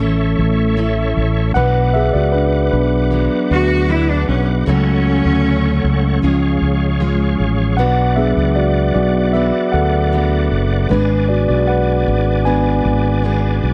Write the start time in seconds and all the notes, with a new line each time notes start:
Already playing: A1 A4 C#5 E5 C#6
0.00 E3 A3 C#4 E4 A4
0.39 A1
0.77 A3 C#4 E4 A4
1.17 A1
1.54 B1 B2 F#3 B3 D4 F#4 B4 F#5 D6
1.94 B3 D4 F#4 G#4 E5
2.13 C#2 F#4 D5
2.32 D4 B4
2.72 B1 F#3 B3 D4 B4
3.11 F#3 B3 D4 F#4
3.51 D2 F#4
3.89 F#3 B3 E4 F#4
4.08 D4
4.28 B1 C#4
4.66 C#2 C#3 F#3 A3 C#4 F#4 A4 C#5 C#6
5.25 D2
5.84 C#2
6.22 C#2 F3 G#3 C#4 F4 G#4 F5 C#6
6.62 C#2
7.00 G#3 C#4 F4 G#4
7.40 A1
7.77 B1 B2 F#3 B3 D4 F#4 B4 D5 F#5 D6
8.16 F#3 B3 D4 F#4 G#4 E5
8.37 C#2
8.56 F#4 D5
8.94 B1 F#4 D5
9.33 F#3 B3 D4 F#4 B4 E5
9.72 D2 A4 F#5
10.12 F#3 B3 D4 F#4
10.51 F#1
10.89 G#1 G#3 B3 D4 G#4 B4 D5 G#5
11.29 F#4 D5
11.48 B1 F#4 D5
11.67 B4 F#5
12.08 G#1
12.45 G#3 B3 D4 G#4 B4 G#5
12.85 G#1
13.23 G#3 B3 D4 G#4
13.63 B1